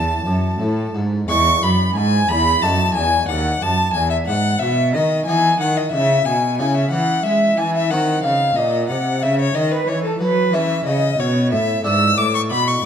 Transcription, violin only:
Already playing: A5
1.29 C#6
1.63 B5
1.96 G#5
2.29 B5
2.62 A5
2.95 G#5
3.29 F#5
3.62 A5
3.94 G#5
4.10 E5
4.27 F#5
4.59 E5
4.94 D#5
5.26 G#5
5.61 F#5
5.77 D#5
5.92 E5
6.25 G#5
6.58 G#5
6.75 E5
6.92 F#5
7.24 E5
7.58 G#5
7.75 E5
7.90 F#5
8.24 F5
8.56 D#5
8.89 F#5
9.23 E5
9.40 C#5
9.56 D#5
9.72 B4
9.88 C#5
10.04 A4
10.21 B4
10.54 E5
10.86 D#5
11.20 C#5
11.53 E5
11.87 E6
12.18 D6
12.35 C#6
12.51 B5
12.68 C#6

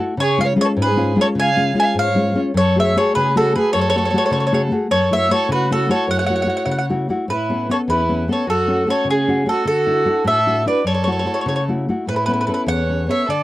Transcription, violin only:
0.22 G#4
0.45 C#5
0.65 A4
0.83 G#4
1.21 A4
1.40 F5
1.81 F5
2.01 C#5
2.59 A4
2.82 C#5
3.00 A4
3.17 G#4
3.38 F#4
3.58 G#4
3.75 A4
4.92 A4
5.15 C#5
5.34 A4
5.53 F#4
5.74 F#4
5.92 A4
6.10 C#5
7.30 E4
7.73 A4
7.89 E4
8.31 A4
8.49 F#4
8.90 A4
9.09 C#4
9.51 F#4
9.70 F#4
10.29 A4
10.68 B4
10.88 A4
12.08 E4
12.70 C#5
13.09 C#5
13.29 A4

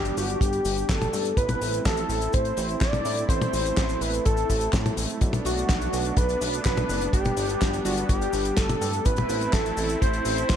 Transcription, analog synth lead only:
Already playing: G4
0.17 F#4
0.41 G4
0.90 A4
1.37 B4
1.86 A4
2.34 C5
2.81 D5
3.29 C5
4.01 B4
4.25 A4
5.46 F#4
6.17 B4
6.65 B4
7.13 G4
7.85 F#4
8.09 G4
8.57 A4
9.05 B4
9.53 A4
10.01 C5

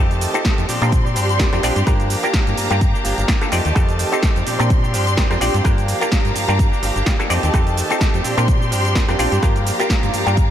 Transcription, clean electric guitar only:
Already playing: D#3 A3
0.00 C4 G4
0.34 A3 C4 G4
0.45 D#3 A3 C4 G4
0.68 F3 C4 D4 G4
1.05 C4 D4 G4
1.15 F3 C4 D4 G4
1.39 F3 C4 D4 G4
1.62 F3 C4 D4 G4
1.76 C4 D4 G4
1.86 F3 A#3 D4 G4
2.23 A#3 D4 G4
2.33 F3 A#3 D4 G4
2.70 A#3 D4 G4
2.94 A#3 D4 G4
3.04 F3 A#3 D4 G4
3.28 F3 A#3 D4 G4
3.51 D#3 A3 C4 G4
3.65 A3 C4 G4
3.75 D#3 A3 C4 G4
4.12 A3 C4 G4
4.23 D#3 A3 C4 G4
4.46 F3 C4 D4 G4
4.83 C4 D4 G4
4.93 F3 C4 D4 G4
5.06 C4 D4 G4
5.17 F3 C4 D4 G4
5.41 F3 C4 D4 G4
5.54 C4 D4 G4
5.64 F3 A#3 D4 G4
6.01 A#3 D4 G4
6.12 F3 A#3 D4 G4
6.48 A#3 D4 G4
6.72 A#3 D4 G4
6.82 F3 A#3 D4 G4
6.95 A#3 D4 G4
7.06 F3 A#3 D4 G4
7.30 D#3 A3 C4 G4
7.43 A3 C4 G4
7.53 D#3 A3 C4 G4
7.90 A3 C4 G4
8.00 D#3 A3 C4 G4
8.24 F3 C4 D4 G4
8.60 C4 D4 G4
8.71 F3 C4 D4 G4
8.95 F3 C4 D4 G4
9.18 F3 C4 D4 G4
9.32 C4 D4 G4
9.42 F3 A#3 D4 G4
9.79 A#3 D4 G4
9.89 F3 A#3 D4 G4
10.26 A#3 D4 G4

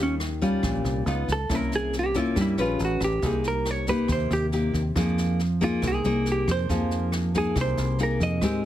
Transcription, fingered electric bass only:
Already playing: D#2
0.63 A#1
0.84 C2
1.06 C#2
1.28 C#2
1.49 C2
2.36 G2
2.57 A#1
2.80 A1
3.00 A1
3.22 C2
4.09 D#2
4.30 D#2
4.74 D#2
4.96 F2
5.83 C2
6.04 C2
6.47 F2
6.69 F2
7.56 C2
7.77 C2
8.20 F2
8.42 G#2

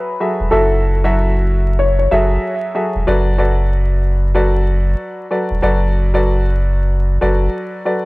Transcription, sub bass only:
0.40 E1
0.52 F#1
2.12 F#1
2.95 E1
3.07 F#1
5.51 E1
5.63 F#1
7.22 F#1

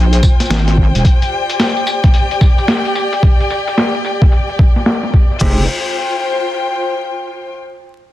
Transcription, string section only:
Already playing: F4 C5 G5
1.06 G4
1.26 D5
5.41 F4
5.51 C5
5.60 G5

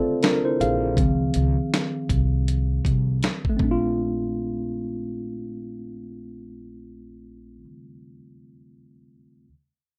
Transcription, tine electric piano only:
Already playing: C4 F4 A4 C5 D5 E5 F5
0.23 D4 A#4
0.45 E4 C5
0.61 G#4 F5
0.98 D#3 F3 C4
3.50 A3
3.57 C4
3.64 D4
3.71 F4

